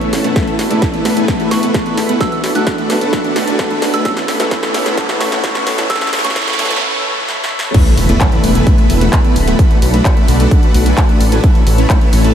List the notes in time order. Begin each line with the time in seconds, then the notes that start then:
Already playing: E4 A4 C#5 E5 A5
0.01 A3 C#4 E4 B4 C#5, closed hi-hat
0.12 E1 B3 C#4 E4 A4, snare, open hi-hat
0.24 A3 C#4 E4 B4 F#5, closed hi-hat
0.35 A3 B3 E4 A4 B4 E5 B5, kick, snare, closed hi-hat, riser
0.47 closed hi-hat
0.59 E1, snare, open hi-hat
0.70 A3 B3 E4 A4 B4 D5, closed hi-hat
0.82 kick, snare, closed hi-hat
0.94 A3 B3 E4 B4 D5, closed hi-hat
1.05 E1 A3 B3 E4 A4, snare, open hi-hat
1.17 A3 B3 E4 B4 G#5, closed hi-hat
1.28 A3 B3 E4 B4 E5, kick, snare, closed hi-hat
1.39 A3 B3 E4 A4 B4 E5, closed hi-hat
1.51 E1 C#6, snare, open hi-hat
1.63 A3 B3 E4 B4 F#5, closed hi-hat
1.74 A3 B3 E4 A4, kick, snare, closed hi-hat
1.86 A3 B3 E4 B4 D5, closed hi-hat
1.97 E1 A3 B3 E4 A4, snare, open hi-hat
2.09 A3 B3 E4 B4 F#5, closed hi-hat
2.20 A3 B3 D4 F#4 A4 B4 D5 F#5 E6, kick, snare, closed hi-hat
2.32 E6, closed hi-hat
2.44 B1, snare, open hi-hat
2.55 A3 B3 D4 F#4 A4 B4 E5 F#6, closed hi-hat
2.67 kick, snare, closed hi-hat
2.78 A3 D4 F#4 B4 E5, closed hi-hat
2.89 B1 B3 D4 F#4 A4, snare, open hi-hat
3.01 A3 D4 F#4 B4 A5, closed hi-hat
3.13 A3 D4 F#4 B4 F#5, kick, snare, closed hi-hat
3.24 A3 B3 D4 F#4 A4 B4 F#5, closed hi-hat
3.36 B1, snare, open hi-hat
3.48 A3 D4 F#4 B4 G#5, closed hi-hat
3.59 B3 D4 F#4 A4, kick, snare, closed hi-hat
3.71 A3 D4 F#4 B4 E5, closed hi-hat
3.81 B1 B3 D4 F#4 A4, snare, open hi-hat
3.94 A3 D4 F#4 B4 G#5 E6, closed hi-hat
4.05 A3 B3 C#4 E4 A4 B4 C#5 E5 E6, kick, snare, closed hi-hat
4.17 snare, closed hi-hat
4.28 A1, snare, open hi-hat
4.39 A3 B3 C#4 E4 A4 B4 C#5, snare, closed hi-hat
4.51 kick, snare, closed hi-hat
4.63 A3 C#4 E4 B4 C#5, snare, closed hi-hat
4.74 A1 B3 C#4 E4 A4, snare, open hi-hat
4.86 A3 C#4 E4 B4 A5, snare, closed hi-hat
4.97 A3 C#4 E4 B4 E5, kick, snare, closed hi-hat
5.08 A3 B3 C#4 E4 A4 B4 E5, snare, closed hi-hat
5.21 A1 C#6, snare, open hi-hat
5.32 A3 C#4 E4 B4 F#5, snare, closed hi-hat
5.43 B3 C#4 E4 A4, kick, snare, closed hi-hat
5.55 A3 C#4 E4 B4 C#5, snare, closed hi-hat
5.66 A1 B3 C#4 E4 A4, snare, open hi-hat
5.78 A3 C#4 E4 B4 F#5, snare, closed hi-hat
5.89 A3 B3 C#4 E4 A4 B4 E5 E6, kick, snare, closed hi-hat
5.96 snare
6.01 E6, snare, closed hi-hat
6.07 snare
6.13 A1, snare, open hi-hat
6.19 snare
6.24 A3 B3 C#4 E4 A4 B4 C#5 C#6, snare, closed hi-hat
6.30 snare
6.36 C#6, kick, snare, closed hi-hat
6.42 snare
6.47 A3 C#4 E4 B4 C#5, snare, closed hi-hat
6.53 snare
6.58 A1 B3 C#4 E4 A4, snare, open hi-hat
6.65 snare
6.71 A3 C#4 E4 B4 A5, snare, closed hi-hat
6.76 snare
7.28 snare
7.44 snare
7.59 snare
7.74 A3 B3 E4 A4 B4 E5 B5, kick, closed hi-hat, crash, impact
7.86 closed hi-hat
7.97 E1, open hi-hat
8.09 A3 B3 E4 B4 D5, closed hi-hat
8.21 kick, clap, closed hi-hat
8.32 A3 B3 E4 B4 D5, closed hi-hat
8.44 E1, open hi-hat
8.55 A3 B3 E4 B4 G#5, closed hi-hat
8.67 A3 B3 E4 B4 E5, kick, closed hi-hat
8.78 A3 B3 E4 B4 E5, closed hi-hat
8.90 E1, open hi-hat
9.01 A3 B3 E4 B4 F#5, closed hi-hat
9.13 kick, clap, closed hi-hat
9.24 A3 B3 E4 B4 D5, closed hi-hat
9.36 D1, open hi-hat
9.47 A3 B3 E4 B4 F#5, closed hi-hat
9.59 A3 D4 F#4 B4 D5 F#5, kick, closed hi-hat
9.71 closed hi-hat
9.82 B1, open hi-hat
9.94 A3 D4 F#4 B4 E5, closed hi-hat
10.05 kick, clap, closed hi-hat
10.17 A3 D4 F#4 B4 E5, closed hi-hat
10.28 B1, open hi-hat
10.40 A3 D4 F#4 B4 A5, closed hi-hat
10.51 A3 D4 F#4 B4 F#5, kick, closed hi-hat
10.63 A3 D4 F#4 B4 F#5, closed hi-hat
10.74 B1, open hi-hat
10.86 A3 D4 F#4 B4 G#5, closed hi-hat
10.97 kick, clap, closed hi-hat
11.09 A3 D4 F#4 B4 E5, closed hi-hat
11.21 A1, open hi-hat
11.32 A3 D4 F#4 B4 G#5, closed hi-hat
11.44 A3 C#4 E4 B4 C#5 E5 B5, kick, closed hi-hat
11.55 closed hi-hat
11.67 A1, open hi-hat
11.78 A3 C#4 E4 B4 C#5, closed hi-hat
11.90 kick, clap, closed hi-hat
12.01 A3 C#4 E4 B4 C#5, closed hi-hat
12.13 A1, open hi-hat
12.24 A3 C#4 E4 B4 A5, closed hi-hat